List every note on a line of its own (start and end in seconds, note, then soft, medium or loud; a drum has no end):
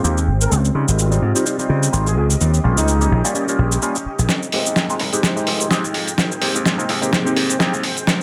0.00 0.49 G#3 medium
0.00 0.18 A#3 medium
0.00 2.36 C4 medium
0.00 0.47 G5 medium
0.04 0.29 D#2 medium
0.04 0.18 C4 medium
0.04 0.18 D#4 medium
0.04 0.13 F4 medium
0.04 0.18 G4 loud
0.04 shaker medium
0.18 shaker soft
0.28 0.45 G#1 medium
0.41 0.57 A#4 medium
0.41 shaker medium
0.51 0.69 C#2 medium
0.51 2.38 F4 medium
0.51 4.25 G4 medium
0.51 4.25 D#5 medium
0.51 shaker medium
0.65 shaker soft
0.75 0.84 C#3 medium
0.75 1.08 G3 medium
0.75 1.08 C4 medium
0.75 1.09 D#4 medium
0.75 1.09 F4 medium
0.88 1.17 G#1 medium
0.88 shaker medium
0.99 shaker medium
1.11 1.23 G3 medium
1.11 1.23 C4 medium
1.11 1.23 D#4 medium
1.11 1.23 F4 medium
1.11 shaker soft
1.22 1.32 G#2 medium
1.35 1.44 G3 medium
1.35 1.44 C4 medium
1.35 1.44 D#4 medium
1.35 1.44 F4 medium
1.35 shaker medium
1.45 1.57 G3 medium
1.45 1.57 C4 medium
1.45 1.57 D#4 medium
1.45 1.57 F4 medium
1.45 shaker medium
1.59 1.90 G3 medium
1.59 1.90 C4 medium
1.59 1.91 D#4 medium
1.59 1.91 F4 medium
1.59 shaker soft
1.69 1.87 C#3 medium
1.83 shaker medium
1.92 2.17 G#1 medium
1.92 2.07 G3 medium
1.92 2.07 C4 medium
1.92 2.07 D#4 medium
1.92 2.07 F4 loud
1.92 shaker medium
2.06 2.13 G#4 medium
2.06 shaker soft
2.17 2.35 C#2 medium
2.17 2.25 G#4 medium
2.30 shaker medium
2.41 2.58 D#2 medium
2.41 4.28 C#4 medium
2.41 shaker soft
2.54 shaker soft
2.64 2.73 A#1 medium
2.64 2.97 G3 medium
2.64 2.98 A#3 medium
2.64 2.98 C#4 medium
2.64 2.98 F4 medium
2.77 3.07 C#2 medium
2.77 3.24 D#4 medium
2.77 shaker medium
2.88 shaker medium
3.01 3.12 G3 medium
3.01 3.12 A#3 medium
3.01 3.13 C#4 medium
3.01 3.13 D#4 medium
3.01 shaker soft
3.11 3.21 A#1 medium
3.24 3.33 G3 medium
3.24 3.33 A#3 medium
3.24 3.33 C#4 medium
3.24 3.34 F4 loud
3.24 shaker medium
3.35 3.46 G3 medium
3.35 3.46 A#3 medium
3.35 3.46 C#4 medium
3.35 3.47 F4 medium
3.35 shaker medium
3.48 3.80 G3 medium
3.48 3.80 A#3 medium
3.48 3.80 C#4 medium
3.48 3.80 F4 medium
3.48 shaker soft
3.58 3.76 A#1 medium
3.72 shaker medium
3.82 3.96 G3 medium
3.82 3.96 A#3 medium
3.82 3.96 C#4 medium
3.82 3.96 F4 loud
3.82 shaker medium
3.95 shaker soft
4.06 muted slap bass stroke soft
4.19 4.26 A#1 medium
4.19 shaker medium
4.29 4.47 F2 medium
4.29 8.03 G#3 medium
4.29 6.16 D#4 medium
4.29 8.04 G5 medium
4.29 snare soft
4.29 closed hi-hat medium
4.29 shaker medium
4.43 shaker soft
4.52 4.62 F1 medium
4.52 4.87 G#3 medium
4.52 4.87 C4 medium
4.52 4.87 D#4 medium
4.52 4.87 G4 medium
4.52 open hi-hat loud
4.65 4.95 D#2 medium
4.65 closed hi-hat soft
4.65 shaker medium
4.76 snare soft
4.76 closed hi-hat medium
4.76 shaker medium
4.90 5.01 G#3 medium
4.90 5.01 C4 medium
4.90 5.01 D#4 medium
4.90 5.02 F4 medium
4.90 shaker soft
4.99 5.10 C2 medium
4.99 open hi-hat medium
5.13 5.22 G#3 medium
5.13 5.22 C4 medium
5.13 5.22 D#4 medium
5.13 5.22 G4 loud
5.13 closed hi-hat medium
5.13 shaker medium
5.23 5.35 G#3 medium
5.23 5.35 C4 medium
5.23 5.35 D#4 medium
5.23 5.35 G4 medium
5.23 snare soft
5.23 closed hi-hat medium
5.23 shaker medium
5.36 5.68 G#3 medium
5.36 5.68 C4 medium
5.36 5.68 D#4 medium
5.36 5.69 G4 medium
5.36 shaker soft
5.47 5.65 F1 medium
5.47 open hi-hat loud
5.60 closed hi-hat medium
5.60 shaker medium
5.70 5.95 D#2 medium
5.70 5.85 G#3 medium
5.70 5.85 C4 medium
5.70 5.85 D#4 medium
5.70 5.85 G4 loud
5.70 snare soft
5.70 closed hi-hat medium
5.70 shaker medium
5.85 shaker soft
5.94 6.12 F2 medium
5.94 open hi-hat medium
6.07 closed hi-hat medium
6.07 shaker medium
6.18 6.36 G#1 medium
6.18 8.05 C4 medium
6.18 snare soft
6.18 closed hi-hat medium
6.18 shaker soft
6.32 shaker soft
6.41 6.51 G#2 medium
6.41 6.75 A#3 medium
6.41 6.75 C4 medium
6.41 6.75 D#4 medium
6.41 6.75 G4 medium
6.41 open hi-hat loud
6.55 6.84 D#2 medium
6.55 closed hi-hat medium
6.55 shaker medium
6.65 snare soft
6.65 closed hi-hat medium
6.65 shaker medium
6.78 6.90 A#3 medium
6.78 6.90 C4 medium
6.78 6.90 D#4 medium
6.78 6.90 F4 medium
6.78 shaker soft
6.89 6.99 D#2 medium
6.89 open hi-hat medium
7.01 7.11 A#3 medium
7.01 7.11 C4 medium
7.01 7.11 D#4 medium
7.01 7.11 G4 loud
7.01 closed hi-hat medium
7.01 shaker medium
7.12 7.24 A#3 medium
7.12 7.24 C4 medium
7.12 7.24 D#4 medium
7.12 7.24 G4 medium
7.12 snare medium
7.12 closed hi-hat medium
7.12 shaker soft
7.25 7.57 A#3 medium
7.25 7.57 C4 medium
7.25 7.57 D#4 medium
7.25 7.58 G4 medium
7.25 shaker soft
7.36 7.54 G#2 medium
7.36 open hi-hat loud
7.49 closed hi-hat medium
7.49 shaker medium
7.59 7.85 D#2 medium
7.59 7.73 A#3 medium
7.59 7.74 C4 medium
7.59 7.74 D#4 medium
7.59 7.74 G4 loud
7.59 snare medium
7.59 closed hi-hat medium
7.59 shaker medium
7.74 shaker soft
7.83 8.01 G#1 medium
7.83 open hi-hat medium
7.97 closed hi-hat soft
7.97 shaker medium
8.07 8.23 C#2 medium
8.07 8.23 G4 medium
8.07 8.23 D#5 medium
8.07 8.23 F5 medium
8.07 8.23 C6 medium
8.07 snare medium
8.07 closed hi-hat medium
8.07 shaker soft